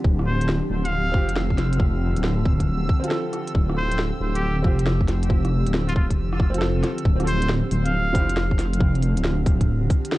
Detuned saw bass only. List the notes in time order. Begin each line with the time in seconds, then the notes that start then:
0.04 D1
0.70 D1
1.14 F1
2.16 D1
2.45 D1
3.55 D1
4.21 D1
4.64 F1
5.66 D1
5.96 D1
6.18 F1
7.05 D1
7.71 D1
8.15 F1
9.17 D1
9.46 D1